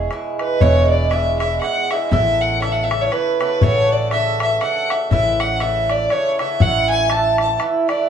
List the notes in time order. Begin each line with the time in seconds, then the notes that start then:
Already playing: G#3 E4 G#4 C#5
0.11 B2 G#3 E4 G#4, bodhran
0.39 B4, bodhran
0.61 E1 B2 G#3 E4 G#4 C#5, bodhran
0.89 D5
1.10 B2 G#3 E4 G#4 E5, bodhran
1.39 B2 G#3 E4 G#4 E5, bodhran
1.61 B2 G#3 E4 G#4 F#5, bodhran
1.90 B2 G#3 E4 G#4 E5, bodhran
2.11 A1 C#3 B3 E4 A4 E5, bodhran
2.41 F#5
2.60 C#3 B3 E4 A4 E5, bodhran
2.72 F#5
2.84 E5
2.90 C#3 B3 E4 A4, bodhran
3.01 C#5
3.10 C#3 B3 E4 A4 B4, bodhran
3.40 C#3 B3 E4 A4 B4, bodhran
3.61 A1 C#3 A3 F#4 A4 C#5, bodhran
3.90 D5
4.11 C#3 A3 F#4 A4 E5, bodhran
4.40 E5, bodhran
4.61 C#3 A3 F#4 A4 F#5, bodhran
4.90 E5, bodhran
5.11 A1 C#3 A3 E4 B4 E5, bodhran
5.40 F#5, bodhran
5.60 C#3 A3 E4 B4 E5, bodhran
5.90 D5, bodhran
6.10 C#3 A3 E4 B4 C#5, bodhran
6.39 C#3 A3 E4 B4 E5, bodhran
6.60 A1 E3 A3 E4 B4 F#5, bodhran
6.89 G#5
7.09 E3 A3 E4 B4 A5, bodhran
7.38 A5, bodhran
7.60 E3 A3 E4 B4, bodhran
7.88 E3 A3 E4 B4 D5, bodhran